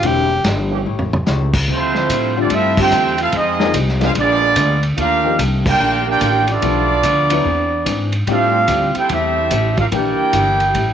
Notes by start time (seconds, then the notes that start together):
Already playing: E3 A#3 D4 G4
0.03 E1 D3 E3 G3 A#3 C4 D4 E4 G4, kick, ride
0.44 G1 E3 A#3 D4 G4, kick, snare, hi-hat pedal, ride
0.71 E3 A3 C#4 G4
0.85 A1 A3 E4 G4 C#5
0.99 floor tom
1.13 floor tom
1.26 C#2 A3 E4 G4 C#5, snare, hi-hat pedal
1.53 kick, crash
1.68 D2 D3 F3 G3 A3 C4 F4, kick
1.72 A3 E4 F4 C5
1.95 snare
2.09 A2 D3 G3 C4 F4, kick, hi-hat pedal, ride
2.37 D3 F3 G3 A3 C4 D4 F4 A4 D5
2.50 G2 D3 G3 A3 C4 E4 F4 A4, kick, ride
2.54 C4 E5
2.77 D3 G3 A3 C4 F4 G4 C5 E5 G5, kick, crash
2.91 E2 D3 G3 C4 F4, hi-hat pedal
3.18 A3 C4 E4 F4 A4 F5, ride
3.32 F2 F3 G#3 C4 D#4 F4 G#4 D#5, kick, ride
3.60 F3 A#3 D#4 G#4, snare
3.74 C2 F3 C4 D#4 G#4, kick, hi-hat pedal, ride
3.88 snare
4.00 G#3 B3 C4 D4 F4, snare, ride
4.04 D#4 G#4 C5 F5
4.15 A#1 A#2 F3 G#3 B3 D4, kick, ride
4.19 B3 F4 G#4 D5
4.56 D2 A#2 G#3 B3 D4, kick, hi-hat pedal, ride
4.83 ride
4.97 D#2 D#3 A3 A#3 D4 F4 G4 A#4 F5, kick, ride
5.24 F3 A#3 D#4 G4
5.38 C2 D#3 A3 D4 G4, kick, hi-hat pedal, ride
5.66 A#3 D4 F4 G4 A#4 D5 G5, kick, crash
5.79 A#1 D#3 A3 D4 G4
6.07 A#3 D4 F4 G4 A#4 D5 G5
6.21 A1 D#3 A3 D4 G4, kick, hi-hat pedal, ride
6.47 F3 A3 B3 D4 F4 A4 D5, ride
6.62 B1 B2 E3 F3 A3 D4 G4, kick, ride
7.03 D2 B2 F3 A3 D4, kick, hi-hat pedal, ride
7.30 F#3 B3 E4 B4, ride
7.45 E2 E3 C4 D4 G#4, kick
7.85 G#2 E3 C4 D4 G#4, kick, hi-hat pedal, ride
8.12 ride
8.27 A2 G3 A3 C4 D4 E4 F4 G4 A4 F5, kick, ride
8.68 D2 A2 G3 C4 E4, kick, hi-hat pedal, ride
8.95 C4 E4 G4 A4 C5 G5, muted upright bass stroke, ride
9.09 E2 A2 G3 C4 E4 G4 A4 E5, kick, ride
9.51 A1 A2 G3 C4 E4, kick, hi-hat pedal, ride
9.76 D4 F4 G4 A#4 F5, kick, ride
9.92 A#1 E3 A#3 D4 E4 G4 A#4 D5 G5, kick, ride
9.96 G4
10.19 muted upright bass stroke
10.33 G1 E3 A#3 D4 G4, kick, hi-hat pedal, ride
10.60 ride
10.74 A1 A2 G3 C#4 E4, kick, ride